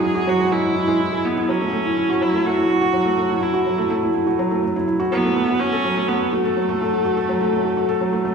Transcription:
Already playing: F#3 G#3 E4 F#4
0.03 E4 G#4
0.15 F#4
0.27 F#3 F#4
0.39 G#3
0.52 G#3 E4
0.64 E4
0.76 E4
0.88 G#3
1.00 E4
1.12 G#4
1.24 B3 E4
1.37 E4
1.49 F#3 C#4
1.61 A3
1.73 A3
1.85 E4
1.97 E4
2.10 F#4
2.21 F#3 E4
2.34 A3
2.45 A3 F#4
2.57 E4
2.69 E4
2.81 F#4
2.93 F#3
3.05 A3
3.17 A3
3.29 E4
3.41 E4
3.54 F#4
3.66 F#3
3.78 A3
3.90 A3
4.03 E4
4.14 E4
4.27 F#4
4.39 F#3
4.51 A3
4.63 A3
4.76 E4
4.88 E4
5.00 F#4
5.12 F#3 B3
5.24 A3
5.36 A3
5.48 F#4
5.60 C#4 F#4
5.72 A4
5.85 F#3
5.96 A3
6.08 A3 B3
6.21 F#4
6.33 A3 F#4
6.45 A4
6.57 F#3
6.69 A3
6.81 A3
6.93 F#4
7.05 F#4
7.17 A4
7.29 F#3
7.41 A3
7.53 A3
7.65 F#4
7.77 F#4
7.89 A4
8.01 F#3
8.13 A3
8.25 A3

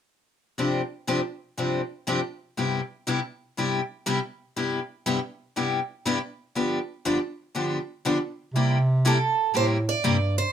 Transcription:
0.58 G2 C3 F3 C4 D4 G4
1.07 G2 C3 F3 C4 D4 G4
1.57 G2 C3 F3 C4 D4 G4
2.07 G2 C3 F3 C4 D4 G4
2.57 G2 C3 G3 B3 E4 G4
3.07 G2 C3 G3 B3 E4 G4
3.57 G2 C3 G3 B3 E4 G4
4.06 G2 C3 G3 B3 E4 G4
4.56 G2 C3 G3 B3 E4 G4
5.06 G2 C3 G3 B3 E4 G4
5.56 G2 C3 G3 B3 E4 G4
6.05 G2 C3 G3 B3 E4 G4
6.55 G2 D3 F3 B3 D4 G4
7.05 G2 D3 F3 B3 D4 G4
7.55 G2 D3 F3 B3 D4 G4
8.05 G2 D3 F3 B3 D4 G4
8.54 C3 G3 A#3 E4 G4
9.05 C3 G3 A#3 E4 G4 A4
9.54 A2 C3 G3 A#3 E4 G4 C5
9.89 D5
10.02 G2 C3 G3 A#3 E4 G4
10.38 C5

